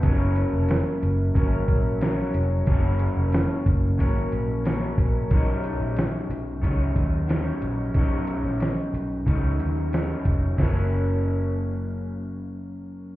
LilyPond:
<<
  \new Staff \with { instrumentName = "Clean electric guitar" } { \clef bass \time 4/4 \key fis \major \tempo 4 = 91 <cis fis ais cis'>2 <cis fis ais cis'>4 <cis fis ais cis'>4 | <cis fis ais cis'>2 <cis fis ais cis'>4 <cis fis ais cis'>4 | <dis fis cis' dis'>2 <dis fis cis' dis'>4 <dis fis cis' dis'>4 | <dis fis cis' dis'>2 <dis fis cis' dis'>4 <dis fis cis' dis'>4 |
<fis, cis fis ais cis'>1 | }
  \new Staff \with { instrumentName = "Picked electric bass" } { \clef bass \time 4/4 \key fis \major fis,,8. eis,,8 r16 fis,,8 gis,,8 ais,,4 eis,,8 | fis,,8. eis,,8 r16 fis,,8 gis,,8 ais,,4 ais,,8 | b,,8. ais,,8 r16 b,,8 cis,8 dis,4 ais,,8 | b,,8. ais,,8 r16 b,,8 cis,8 dis,4 eis,,8 |
fis,,1 | }
  \new DrumStaff \with { instrumentName = "Drums" } \drummode { \time 4/4 <hh bd>8 hh8 <hh sn>8 hh8 <hh bd>8 <hh bd>8 <hh sn>8 hh8 | <hh bd>8 hh8 <hh sn>8 <hh bd>8 <hh bd>8 hh8 <hh sn>8 <hh bd>8 | <hh bd>8 hh8 <hh sn>8 hh8 <hh bd>8 <hh bd>8 <hh sn>8 hh8 | <hh bd>8 hh16 sn16 <hh sn>8 hh8 <hh bd>8 hh8 <hh sn>8 <hh bd>8 |
<cymc bd sn>4 r4 r4 r4 | }
>>